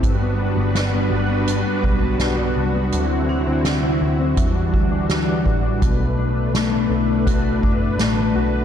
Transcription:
<<
  \new Staff \with { instrumentName = "Vibraphone" } { \time 4/4 \key b \phrygian \tempo 4 = 83 r2 r8 fis'4.~ | fis'8 d'2 r4. | b4. e'2~ e'8 | }
  \new Staff \with { instrumentName = "Clean electric guitar" } { \time 4/4 \key b \phrygian g,16 b16 d'16 b16 d'16 b16 d'16 b16 g,16 b16 d'16 b16 d'16 b16 d'16 b16 | d16 c'16 e'16 c'16 e'16 c'16 e'16 c'16 e16 d'16 fis'16 d'16 fis'16 d'16 fis'16 d'16 | b,8 d'8 a8 d'8 fis'8 d'8 a8 fis'8 | }
  \new Staff \with { instrumentName = "String machine" } { \time 4/4 \key b \phrygian <g d' fis' b'>1 | <d c' e'>2 <e g d'>2 | <a d' b'>1 | }
  \new Staff \with { instrumentName = "Picked electric bass" } { \clef bass \time 4/4 \key b \phrygian g,,8. g,,8. g,,8. r16 b,,4 c,8 | d,8. d,8. d,8 e,8 d,4 a,,8 | b,,4. b,,4 fis,,8 a,,8 b,,8 | }
  \new DrumStaff \with { instrumentName = "Drums" } \drummode { \time 4/4 <hh bd>4 <hh sn>4 hh8 bd8 <hh sn>4 | hh4 <hh sn>4 <hh bd>8 bd8 <hh sn>8 bd8 | <hh bd>4 <hh sn tamb>4 <hh bd>8 bd8 <hh sn tamb>4 | }
>>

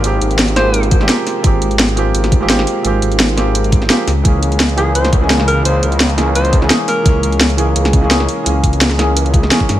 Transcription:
<<
  \new Staff \with { instrumentName = "Alto saxophone" } { \time 4/4 \key des \lydian \tempo 4 = 171 r4. c''8. r4. r16 | r1 | r1 | r4. aes'8 c''8 r4 bes'8 |
c''8 r4. c''8 r4 bes'8~ | bes'4 r2. | r1 | }
  \new Staff \with { instrumentName = "Felt piano" } { \time 4/4 \key des \lydian <f aes bes c' g'>4. <f aes bes c' g'>4 r16 <f aes bes c' g'>16 <f aes bes c' g'>4 | <f aes bes c' g'>4. <f aes bes c' g'>4 r16 <f aes bes c' g'>16 <f aes bes c' g'>4 | <f aes bes c' g'>4. <f aes bes c' g'>4 r8 <f aes bes c' g'>16 r8. | <fes aes bes des' aes'>4. <fes aes bes des' aes'>4 r16 <fes aes bes des' aes'>16 <fes aes bes des' aes'>4 |
<fes aes bes des' aes'>4. <fes aes bes des' aes'>4 r16 <fes aes bes des' aes'>16 <fes aes bes des' aes'>4 | <fes aes bes des' aes'>4. <fes aes bes des' aes'>4 r16 <fes aes bes des' aes'>16 <fes aes bes des' aes'>4 | <fes aes bes des' aes'>4. <fes aes bes des' aes'>4 r8 <fes aes bes des' aes'>16 r8. | }
  \new Staff \with { instrumentName = "Detuned saw bass" } { \clef bass \time 4/4 \key des \lydian aes,,8 aes,,2~ aes,,8 r4 | aes,,8 aes,,4. aes,,4. r8 | aes,,8 aes,,2~ aes,,8 r8 des,8 | des,1 |
des,8 des,2~ des,8 r4 | des,8 des,4. des,4. r8 | des,8 des,2~ des,8 r8 g,8 | }
  \new DrumStaff \with { instrumentName = "Drums" } \drummode { \time 4/4 hh8 hh16 hh16 <hh sn>16 hh16 <hh sn>8 hh16 hh16 <hh bd>16 sn16 <hh sn>8 <hho sn>8 | <hh bd>8 hh16 hh16 <hh sn>16 hh16 hh8 hh16 <hh sn>16 <hh bd>8 <hh sn>16 sn16 hho8 | hh8 hh16 hh16 <hh sn>16 hh16 <hh sn>8 hh16 hh16 <hh bd>16 sn16 <hh sn>8 <hho sn>8 | <hh bd>8 hh16 hh16 <hh sn>16 hh16 hh8 hh16 <hh sn>16 <hh bd>8 <hh sn>16 sn16 hho8 |
hh8 hh16 hh16 <hh sn>16 hh16 <hh sn>8 hh16 hh16 <hh bd>16 sn16 <hh sn>8 <hho sn>8 | <hh bd>8 hh16 hh16 <hh sn>16 hh16 hh8 hh16 <hh sn>16 <hh bd>8 <hh sn>16 sn16 hho8 | hh8 <hh bd>16 hh16 <hh sn>16 <hh sn>16 <hh sn>8 hh16 hh16 <hh bd>16 sn16 <hh sn>16 bd16 <hho sn>8 | }
>>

